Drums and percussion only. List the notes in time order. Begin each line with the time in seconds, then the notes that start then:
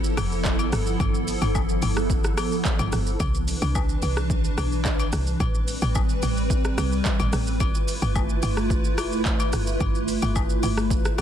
0.04 shaker
0.17 cross-stick, open hi-hat, high agogo, shaker
0.32 shaker
0.45 kick, clap, shaker
0.59 high agogo, shaker
0.72 cross-stick, open hi-hat, shaker
0.87 shaker
1.00 kick, high agogo, shaker
1.15 shaker
1.28 open hi-hat, shaker
1.42 high agogo, shaker
1.55 kick, low woodblock, shaker
1.69 shaker
1.82 open hi-hat, high agogo, shaker
1.97 cross-stick, shaker
2.10 kick, shaker
2.24 cross-stick, shaker
2.38 cross-stick, open hi-hat, high agogo, shaker
2.52 shaker
2.65 kick, clap, shaker
2.79 high agogo, shaker
2.92 cross-stick, open hi-hat, shaker
3.07 shaker
3.20 kick, high agogo, shaker
3.35 shaker
3.48 open hi-hat, shaker
3.62 high agogo, shaker
3.75 kick, low woodblock, shaker
3.89 shaker
4.02 open hi-hat, high agogo, shaker
4.17 cross-stick, shaker
4.30 kick, shaker
4.44 shaker
4.58 cross-stick, open hi-hat, high agogo, shaker
4.72 shaker
4.85 kick, clap, shaker
4.99 high agogo, shaker
5.12 cross-stick, open hi-hat, shaker
5.27 shaker
5.40 kick, high agogo, shaker
5.55 shaker
5.68 open hi-hat, shaker
5.82 high agogo, shaker
5.95 kick, low woodblock, shaker
6.09 shaker
6.22 open hi-hat, high agogo, shaker
6.37 shaker
6.50 kick, shaker
6.64 cross-stick, shaker
6.78 cross-stick, open hi-hat, high agogo, shaker
6.92 shaker
7.05 kick, clap, shaker
7.20 high agogo, shaker
7.33 cross-stick, open hi-hat, shaker
7.47 shaker
7.60 kick, high agogo, shaker
7.75 shaker
7.88 open hi-hat, shaker
8.02 high agogo, shaker
8.15 kick, low woodblock, shaker
8.29 shaker
8.43 open hi-hat, high agogo, shaker
8.57 cross-stick, shaker
8.70 kick, shaker
8.84 shaker
8.98 cross-stick, open hi-hat, high agogo, shaker
9.12 shaker
9.25 kick, clap, shaker
9.40 high agogo, shaker
9.53 cross-stick, open hi-hat, shaker
9.67 shaker
9.80 kick, high agogo, shaker
9.95 shaker
10.08 open hi-hat, shaker
10.22 high agogo, shaker
10.36 kick, low woodblock, shaker
10.50 shaker
10.63 open hi-hat, high agogo, shaker
10.78 cross-stick, shaker
10.90 kick, shaker
11.05 cross-stick, shaker
11.18 cross-stick, open hi-hat, high agogo, shaker